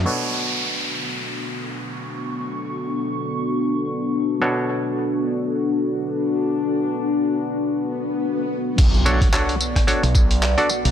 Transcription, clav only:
X:1
M:4/4
L:1/16
Q:"Swing 16ths" 1/4=110
K:Bm
V:1 name="Clav"
[B,,DFAc]16- | [B,,DFAc]16 | [B,,DFAc]16- | [B,,DFAc]16 |
z2 [DFAc]2 [DFAc]2 z2 [DFAc] z4 [DFAd] z2 |]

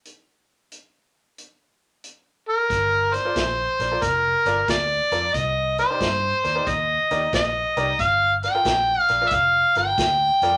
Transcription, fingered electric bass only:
X:1
M:4/4
L:1/8
Q:"Swing" 1/4=91
K:Gm
V:1 name="Fingered electric bass" clef=bass
z8 | G,,,2 B,,, B,,, F,,, G,,, D,, F,, | C,,2 G,, E,, E,, E,, B,,, C,, | G,,,2 B,,, B,,, F,,, G,,, D,, F,, |]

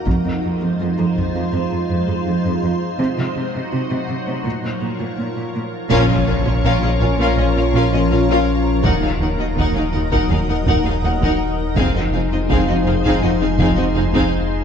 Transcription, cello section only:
X:1
M:4/4
L:1/16
Q:1/4=82
K:Bbm
V:1 name="Cello section" clef=bass
F,, F,, F,, F,, F,, F,, F,, F,, F,, F,, F,, F,, F,, F,, F,, z | C, C, C, C, C, C, C, C, B,, B,, B,, B,, B,, B,, B,, z | B,, B,, B,, B,, B,, B,, B,, B,, B,, B,, B,, B,, B,, B,, z2 | E,, E,, E,, E,, E,, E,, E,, E,, E,, E,, E,, E,, E,, E,, z2 |
F,, F,, F,, F,, F,, F,, F,, F,, F,, F,, F,, F,, F,, F,, z2 |]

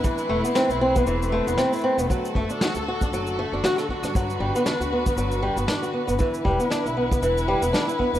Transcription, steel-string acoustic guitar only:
X:1
M:4/4
L:1/16
Q:"Swing 16ths" 1/4=117
K:G
V:1 name="Steel-string acoustic guitar"
E,2 A, B, C E C B, E,2 A, B, C E C B, | F,2 A, D F A F D F,2 A, D F A F D | F,2 G, B, D F B, B, F,2 G, B, D F B, B, | E,2 G, B, D E B, B, E,2 G, B, D E B, B, |]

